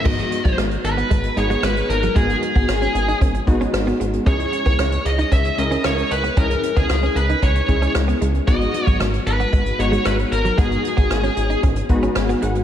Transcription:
<<
  \new Staff \with { instrumentName = "Lead electric guitar" } { \time 4/4 \key gis \minor \tempo 4 = 114 dis''4 r8 b'4 cis''8 b'8 ais'8 | gis'2 r2 | cis''4. dis''8 e''8 dis''8 cis''8 b'8 | ais'8. gis'8. b'8 cis''4 r4 |
dis''4 r8 b'4 cis''8 b'8 ais'8 | gis'2 r2 | }
  \new Staff \with { instrumentName = "Synth keys" } { \time 4/4 \key gis \minor << { r1 | r1 | r1 | r1 |
r1 | r2 r8 b''8 gis''8 fis''8 | } \\ { <gis b dis' fis'>4. r4 <gis b dis' gis'>4 r8 | <gis b dis' fis'>4. r4 <gis b dis' fis'>4 r8 | <gis cis' e' gis'>4. r4 <gis cis' e' ais'>4 r8 | <gis cis' e' gis'>4. r4 <gis cis' e' gis'>4 r8 |
<gis b dis' fis'>4. r4 <gis b dis' fis'>4 r8 | <gis b dis' fis'>4. r4 <gis b dis' fis'>4 r8 | } >> }
  \new Staff \with { instrumentName = "Clean electric guitar" } { \time 4/4 \key gis \minor gis16 r8 fis16 gis16 r8 b16 gis16 r8 gis16 gis16 r8 fis16 | gis16 r8 b16 r16 cis'16 r16 dis'16 cis'16 r8 cis'16 r16 b16 gis16 r16 | cis'16 r8 b16 cis'16 r8 dis'16 cis'16 r8 cis'16 cis'16 r8 b16 | cis'16 r8 b16 r16 cis'16 r16 dis'16 cis'16 r8 cis'16 r16 b16 gis16 r16 |
gis16 r8 fis16 gis16 r8 b16 gis16 r8 gis16 gis16 r8 fis16 | gis16 r8 b16 r16 cis'16 r16 dis'16 cis'16 r8 cis'16 r16 b16 gis16 r16 | }
  \new Staff \with { instrumentName = "Analog synth bass" } { \clef bass \time 4/4 \key gis \minor gis,,8 r16 gis,,16 gis,,8 gis,,8 gis,,8 gis,,8 gis,,8 gis,,8 | gis,,8 r16 gis,,16 gis,,8 gis,,8 gis,,8 gis,,8 gis,,8 gis,,8 | cis,8 r16 cis,16 cis,8 cis,8 cis,8 cis,8 cis,8 cis,8 | cis,8 r16 cis,16 cis,8 cis,8 cis,8 cis,8 cis,8 cis,8 |
gis,,8 r16 gis,,16 gis,,8 gis,,8 gis,,8 gis,,8 gis,,8 gis,,8 | gis,,8 r16 gis,,16 gis,,8 gis,,8 gis,,8 gis,,8 gis,,8 gis,,8 | }
  \new DrumStaff \with { instrumentName = "Drums" } \drummode { \time 4/4 <cymc bd>16 hh16 hh16 <hh bd>16 <hh ss>16 hh16 hh16 hh16 <hh bd>16 hh16 hh16 hh16 <hh ss>16 hh16 hh16 hh16 | <hh bd>16 hh16 hh16 <hh bd>16 <hh ss>16 hh16 hh16 hh16 <hh bd>16 hh16 <hh bd>16 hh16 <hh ss>16 hh16 hh16 hh16 | <hh bd>16 hh16 hh16 <hh bd>16 <hh ss>16 hh16 hh16 hh16 <hh bd>16 hh16 hh16 hh16 <hh ss>16 hh16 hh16 hh16 | <hh bd>16 hh16 hh16 <hh bd>16 <hh ss>16 hh16 hh16 hh16 <hh bd>16 hh16 <hh bd>16 hh16 <hh ss>16 hh16 hh16 hh16 |
<hh bd>16 hh16 hh16 <hh bd>16 <hh ss>16 hh16 hh16 hh16 <hh bd>16 hh16 hh16 hh16 <hh ss>16 hh16 hh16 hh16 | <hh bd>16 hh16 hh16 <hh bd>16 <hh ss>16 hh16 hh16 hh16 <hh bd>16 hh16 <hh bd>16 hh16 <hh ss>16 hh16 hh16 hh16 | }
>>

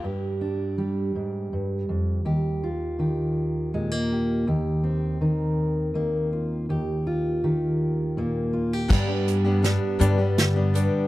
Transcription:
<<
  \new Staff \with { instrumentName = "Steel-string acoustic guitar" } { \time 6/8 \key g \phrygian \tempo 4. = 54 r2. | r2. | r2. | r2. |
<g, d g b d' g'>16 <g b d' g'>8 <g b d' g'>16 <g b d' g'>8 <g, d g b d' g'>16 <g b d' g'>8 <g b d' g'>16 <g b d' g'>8 | }
  \new Staff \with { instrumentName = "Steel-string acoustic guitar" } { \time 6/8 \key g \phrygian << { g'8 d'8 g'2 | g'8 f'8 g'4 aes16 bes16 g'8 | g'8 c'8 bes'4 bes8 f'8 | g'8 f'8 g'4 bes8 f'16 g'16 |
<g b b'>4. b'4 b'8 | } \\ { g,4 g8 aes,8 g,8 f,8 | ees,4 ees4 bes,4 | ees,4 ees4 ees,4 | ees,4 ees4 bes,4 |
g,4 g4 d4 | } >> }
  \new Staff \with { instrumentName = "Upright bass" } { \clef bass \time 6/8 \key g \phrygian r2. | r2. | r2. | r2. |
g,4. g,4. | }
  \new DrumStaff \with { instrumentName = "Drums" } \drummode { \time 6/8 r4. r4. | r4. r4. | r4. r4. | r4. r4. |
<cymc bd sn>8 hh8 <hh sn>8 hh8 <hh sn>8 hh8 | }
>>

